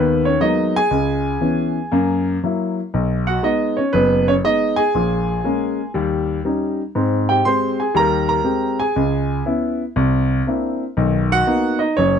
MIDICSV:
0, 0, Header, 1, 2, 480
1, 0, Start_track
1, 0, Key_signature, 5, "minor"
1, 0, Tempo, 502934
1, 871, Time_signature, 4, 2, 24, 8
1, 11638, End_track
2, 0, Start_track
2, 0, Title_t, "Grand piano"
2, 0, Program_c, 0, 0
2, 0, Note_on_c, 0, 39, 80
2, 0, Note_on_c, 0, 51, 72
2, 0, Note_on_c, 0, 59, 60
2, 0, Note_on_c, 0, 71, 79
2, 223, Note_off_c, 0, 59, 0
2, 242, Note_on_c, 0, 73, 82
2, 244, Note_off_c, 0, 71, 0
2, 252, Note_on_c, 0, 61, 54
2, 334, Note_off_c, 0, 51, 0
2, 335, Note_off_c, 0, 39, 0
2, 385, Note_on_c, 0, 54, 53
2, 390, Note_off_c, 0, 61, 0
2, 391, Note_on_c, 0, 75, 88
2, 393, Note_on_c, 0, 56, 44
2, 395, Note_on_c, 0, 58, 45
2, 400, Note_off_c, 0, 73, 0
2, 400, Note_on_c, 0, 59, 49
2, 410, Note_on_c, 0, 63, 68
2, 701, Note_off_c, 0, 63, 0
2, 723, Note_off_c, 0, 75, 0
2, 726, Note_off_c, 0, 54, 0
2, 729, Note_on_c, 0, 80, 106
2, 730, Note_off_c, 0, 56, 0
2, 731, Note_off_c, 0, 58, 0
2, 733, Note_off_c, 0, 59, 0
2, 735, Note_on_c, 0, 68, 73
2, 865, Note_on_c, 0, 37, 67
2, 867, Note_on_c, 0, 49, 67
2, 1286, Note_off_c, 0, 37, 0
2, 1286, Note_off_c, 0, 49, 0
2, 1343, Note_on_c, 0, 52, 49
2, 1344, Note_on_c, 0, 59, 52
2, 1349, Note_on_c, 0, 61, 62
2, 1685, Note_off_c, 0, 52, 0
2, 1686, Note_off_c, 0, 59, 0
2, 1689, Note_off_c, 0, 61, 0
2, 1828, Note_on_c, 0, 58, 71
2, 1834, Note_on_c, 0, 42, 82
2, 2124, Note_off_c, 0, 80, 0
2, 2127, Note_off_c, 0, 68, 0
2, 2247, Note_off_c, 0, 58, 0
2, 2250, Note_off_c, 0, 42, 0
2, 2324, Note_on_c, 0, 54, 51
2, 2325, Note_on_c, 0, 58, 45
2, 2334, Note_on_c, 0, 64, 51
2, 2656, Note_off_c, 0, 54, 0
2, 2656, Note_off_c, 0, 58, 0
2, 2661, Note_off_c, 0, 64, 0
2, 2805, Note_on_c, 0, 35, 72
2, 3121, Note_on_c, 0, 78, 86
2, 3133, Note_on_c, 0, 66, 69
2, 3216, Note_off_c, 0, 35, 0
2, 3271, Note_on_c, 0, 56, 51
2, 3272, Note_off_c, 0, 66, 0
2, 3273, Note_on_c, 0, 59, 50
2, 3277, Note_on_c, 0, 63, 55
2, 3281, Note_off_c, 0, 78, 0
2, 3283, Note_on_c, 0, 75, 82
2, 3595, Note_on_c, 0, 73, 73
2, 3608, Note_off_c, 0, 75, 0
2, 3609, Note_off_c, 0, 56, 0
2, 3611, Note_off_c, 0, 59, 0
2, 3613, Note_off_c, 0, 63, 0
2, 3613, Note_on_c, 0, 61, 60
2, 3743, Note_off_c, 0, 73, 0
2, 3748, Note_on_c, 0, 71, 90
2, 3753, Note_off_c, 0, 61, 0
2, 3759, Note_on_c, 0, 30, 80
2, 3761, Note_on_c, 0, 59, 66
2, 4057, Note_off_c, 0, 59, 0
2, 4082, Note_off_c, 0, 71, 0
2, 4086, Note_on_c, 0, 73, 91
2, 4087, Note_on_c, 0, 61, 70
2, 4133, Note_off_c, 0, 73, 0
2, 4135, Note_off_c, 0, 61, 0
2, 4173, Note_off_c, 0, 30, 0
2, 4239, Note_on_c, 0, 56, 49
2, 4243, Note_on_c, 0, 59, 47
2, 4244, Note_on_c, 0, 75, 98
2, 4247, Note_on_c, 0, 63, 54
2, 4547, Note_on_c, 0, 80, 98
2, 4557, Note_on_c, 0, 68, 78
2, 4570, Note_off_c, 0, 75, 0
2, 4573, Note_off_c, 0, 56, 0
2, 4576, Note_off_c, 0, 59, 0
2, 4578, Note_off_c, 0, 63, 0
2, 4719, Note_on_c, 0, 46, 63
2, 4727, Note_on_c, 0, 34, 64
2, 5133, Note_off_c, 0, 46, 0
2, 5138, Note_off_c, 0, 34, 0
2, 5195, Note_on_c, 0, 56, 57
2, 5197, Note_on_c, 0, 58, 55
2, 5201, Note_on_c, 0, 61, 57
2, 5531, Note_off_c, 0, 56, 0
2, 5533, Note_off_c, 0, 58, 0
2, 5534, Note_off_c, 0, 61, 0
2, 5631, Note_off_c, 0, 80, 0
2, 5636, Note_off_c, 0, 68, 0
2, 5671, Note_on_c, 0, 55, 72
2, 5676, Note_on_c, 0, 39, 74
2, 6089, Note_off_c, 0, 55, 0
2, 6092, Note_off_c, 0, 39, 0
2, 6154, Note_on_c, 0, 55, 50
2, 6157, Note_on_c, 0, 61, 43
2, 6163, Note_on_c, 0, 63, 55
2, 6491, Note_off_c, 0, 55, 0
2, 6492, Note_off_c, 0, 61, 0
2, 6495, Note_off_c, 0, 63, 0
2, 6635, Note_on_c, 0, 44, 64
2, 6639, Note_on_c, 0, 60, 64
2, 6957, Note_on_c, 0, 79, 86
2, 6978, Note_on_c, 0, 67, 68
2, 7051, Note_off_c, 0, 44, 0
2, 7053, Note_off_c, 0, 60, 0
2, 7106, Note_off_c, 0, 67, 0
2, 7112, Note_on_c, 0, 84, 97
2, 7118, Note_off_c, 0, 79, 0
2, 7118, Note_on_c, 0, 60, 47
2, 7119, Note_on_c, 0, 56, 54
2, 7121, Note_on_c, 0, 67, 58
2, 7131, Note_on_c, 0, 72, 72
2, 7420, Note_off_c, 0, 72, 0
2, 7442, Note_off_c, 0, 84, 0
2, 7442, Note_on_c, 0, 80, 69
2, 7452, Note_off_c, 0, 60, 0
2, 7453, Note_off_c, 0, 56, 0
2, 7454, Note_off_c, 0, 67, 0
2, 7464, Note_on_c, 0, 68, 59
2, 7582, Note_on_c, 0, 39, 77
2, 7583, Note_on_c, 0, 55, 82
2, 7586, Note_off_c, 0, 80, 0
2, 7598, Note_off_c, 0, 68, 0
2, 7603, Note_on_c, 0, 82, 100
2, 7628, Note_on_c, 0, 70, 76
2, 7896, Note_off_c, 0, 82, 0
2, 7910, Note_off_c, 0, 70, 0
2, 7910, Note_on_c, 0, 82, 88
2, 7925, Note_on_c, 0, 70, 66
2, 8003, Note_off_c, 0, 39, 0
2, 8004, Note_off_c, 0, 55, 0
2, 8056, Note_on_c, 0, 56, 49
2, 8057, Note_on_c, 0, 60, 46
2, 8060, Note_on_c, 0, 67, 55
2, 8366, Note_off_c, 0, 70, 0
2, 8394, Note_on_c, 0, 80, 85
2, 8401, Note_off_c, 0, 56, 0
2, 8402, Note_off_c, 0, 60, 0
2, 8403, Note_off_c, 0, 67, 0
2, 8406, Note_off_c, 0, 82, 0
2, 8410, Note_on_c, 0, 68, 59
2, 8551, Note_on_c, 0, 37, 73
2, 8968, Note_off_c, 0, 37, 0
2, 8993, Note_off_c, 0, 80, 0
2, 9001, Note_off_c, 0, 68, 0
2, 9023, Note_on_c, 0, 59, 55
2, 9029, Note_on_c, 0, 64, 62
2, 9030, Note_on_c, 0, 61, 48
2, 9364, Note_off_c, 0, 59, 0
2, 9367, Note_off_c, 0, 64, 0
2, 9368, Note_off_c, 0, 61, 0
2, 9506, Note_on_c, 0, 36, 82
2, 9925, Note_off_c, 0, 36, 0
2, 9992, Note_on_c, 0, 58, 49
2, 9995, Note_on_c, 0, 60, 46
2, 9996, Note_on_c, 0, 64, 52
2, 9999, Note_on_c, 0, 62, 42
2, 10328, Note_off_c, 0, 58, 0
2, 10329, Note_off_c, 0, 60, 0
2, 10330, Note_off_c, 0, 64, 0
2, 10332, Note_off_c, 0, 62, 0
2, 10469, Note_on_c, 0, 35, 73
2, 10472, Note_on_c, 0, 51, 69
2, 10803, Note_on_c, 0, 66, 68
2, 10806, Note_on_c, 0, 78, 117
2, 10886, Note_off_c, 0, 35, 0
2, 10887, Note_off_c, 0, 51, 0
2, 10945, Note_on_c, 0, 59, 54
2, 10948, Note_on_c, 0, 58, 58
2, 10949, Note_on_c, 0, 63, 68
2, 11241, Note_off_c, 0, 66, 0
2, 11243, Note_off_c, 0, 78, 0
2, 11252, Note_on_c, 0, 75, 77
2, 11258, Note_off_c, 0, 63, 0
2, 11272, Note_on_c, 0, 63, 62
2, 11284, Note_off_c, 0, 59, 0
2, 11285, Note_off_c, 0, 58, 0
2, 11419, Note_off_c, 0, 63, 0
2, 11421, Note_on_c, 0, 73, 92
2, 11425, Note_off_c, 0, 75, 0
2, 11433, Note_on_c, 0, 61, 74
2, 11437, Note_on_c, 0, 30, 80
2, 11638, Note_off_c, 0, 30, 0
2, 11638, Note_off_c, 0, 61, 0
2, 11638, Note_off_c, 0, 73, 0
2, 11638, End_track
0, 0, End_of_file